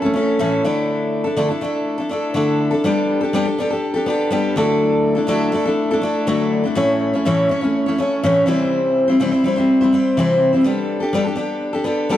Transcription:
steel-string acoustic guitar
0.02 C#4 E4 A4
0.06 A3
0.13 A3 C#4 E4 A4
0.39 A2 E3 A3 C#4 E4 A4
0.64 D3 A3 D4 E4 A4
1.24 D4 E4 A4
1.36 D3 A3 D4 E4 A4
1.49 D4 E4 A4
1.61 A3 D4 E4 A4
1.98 D4 E4 A4
2.09 A3 D4 E4 A4
2.34 D3 A3 D4 E4 A4
2.71 D4 E4 A4
2.84 G3 B3 D4 G4 A4
3.21 D4 G4 A4
3.33 G3 B3 D4 G4 A4
3.45 D4 G4 A4
3.58 B3 D4 G4 A4
3.70 G4 A4
3.74 D4
3.94 D4 G4 A4
4.06 B3 D4 G4 A4
4.30 G3 B3 D4 G4 A4
4.56 D3 F#3 A3 D4 E4 A4
5.15 A3 D4 E4 A4
5.27 D3 F#3 A3 D4 E4 A4
5.52 A3 D4 E4 A4
5.65 A3 D4 E4 A4
5.91 A3 D4 E4 A4
6.01 A3 D4 E4 A4
6.27 D3 F#3 A3 D4 E4 A4
6.63 A3 D4 E4 A4
6.75 A2 E3 A3 C#4 E4 C#5
7.13 A3 C#4 E4 C#5
7.25 A2 E3 A3 C#4 E4 C#5
7.49 A3 C#4 E4 C#5
7.61 A3 C#4 E4 C#5
7.86 A3 C#4 E4 C#5
7.98 A3 C#4 E4 C#5
8.23 A2 E3 A3 C#4 E4 C#5
8.46 C3 E3 G3 C4 E4 C5
9.08 G3 C4 E4 C5
9.20 C3 E3 G3 C4 E4 C5
9.31 G3 C4 E4 C5
9.44 G3 C4 E4
9.48 C5
9.56 G3 C4 E4 C5
9.81 G3 C4 E4 C5
9.93 G3 C4 E4 C5
10.17 C3 E3 G3 C4 E4 C5
10.53 G3 C4 E4 C5
10.64 G3 B3 D4 G4 A4
11.00 D4 G4 A4
11.13 G3 B3 D4 G4 A4
11.25 D4 G4 A4
11.35 B3 D4 G4 A4
11.73 D4 G4 A4
11.84 B3 D4 G4 A4
12.09 G3 B3 D4 G4 A4

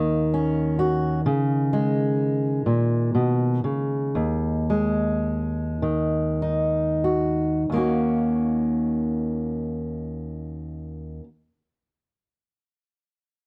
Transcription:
steel-string acoustic guitar
Already playing: D#2 D#3 A#3
0.34 C#4
0.79 F#4
1.26 C#3
1.73 G#3
2.66 A#2
3.15 B2
3.64 C#3
4.15 D#2
4.70 G#3
5.82 D#3
6.42 D#4
7.04 F#4
7.70 D#2 D#3 A#3
7.75 C#4 F#4

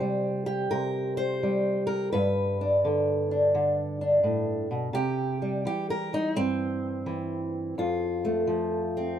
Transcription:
steel-string acoustic guitar
Already playing: C3 G4 C5
0.00 G3
0.46 G4
0.71 C3 A#4
1.17 C5
1.43 G3
1.87 A#4
2.12 G2 B4
2.61 D4
2.85 D3
3.31 D4
3.55 D3
4.01 D4
4.24 A2
4.71 B2
4.93 C3 G4
5.42 G3
5.65 E3 G4
5.90 A#4
6.13 G3 D#4
6.36 G2 C4
7.06 E3
7.78 F2 F4
8.25 A3
8.47 F3
8.97 C4

